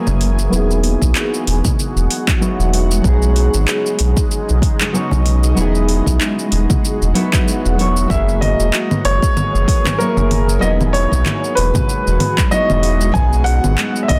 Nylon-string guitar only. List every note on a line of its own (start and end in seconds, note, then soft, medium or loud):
0.00 0.48 F#3 medium
0.00 0.49 A#3 medium
0.00 0.50 C#4 medium
0.00 0.50 E4 medium
0.00 0.50 C#5 medium
0.49 2.37 F#3 medium
0.49 2.38 B3 medium
0.49 2.39 D#4 medium
0.54 2.39 E4 medium
0.54 2.40 G#4 loud
2.40 3.00 F#3 medium
2.40 3.01 B3 medium
2.40 3.02 D#4 medium
2.40 3.02 E4 medium
2.40 3.02 C#5 medium
3.01 4.89 F#3 medium
3.01 4.91 B3 medium
3.01 4.91 C#4 medium
3.06 4.92 D#4 medium
3.06 4.93 G#4 loud
4.92 5.53 F#3 medium
4.92 5.54 B3 medium
4.92 5.54 C#4 medium
4.92 5.55 D#4 medium
4.92 5.55 C#5 medium
5.54 7.11 F#3 medium
5.54 7.12 B3 medium
5.54 7.13 D#4 medium
5.59 7.14 E4 medium
5.59 7.15 G#4 loud
7.14 7.75 F#3 medium
7.14 7.75 B3 medium
7.14 7.76 D#4 medium
7.14 7.76 E4 medium
7.14 7.77 B4 medium
7.78 8.06 F#3 medium
7.78 8.07 B3 medium
7.78 8.07 D#4 medium
7.78 8.08 E4 medium
7.78 8.08 C#5 medium
8.08 9.95 F#3 medium
8.08 9.96 A#3 medium
8.08 9.97 C#4 medium
8.13 9.98 E4 medium
8.13 9.99 G#4 loud
9.99 10.58 F#3 medium
9.99 10.60 A#3 medium
9.99 10.60 C#4 medium
9.99 10.60 E4 medium
9.99 10.61 C#5 medium
10.59 12.47 F#3 loud
10.59 12.48 B3 medium
10.59 12.49 D#4 medium
10.64 12.50 E4 medium
10.64 12.51 G#4 loud
12.51 13.11 F#3 medium
12.51 13.12 B3 medium
12.51 13.12 D#4 medium
12.51 13.13 E4 medium
12.51 13.13 C#5 medium
13.12 14.19 F#3 medium
13.12 14.19 B3 medium
13.12 14.19 C#4 medium
13.17 14.19 D#4 medium
13.17 14.19 G#4 loud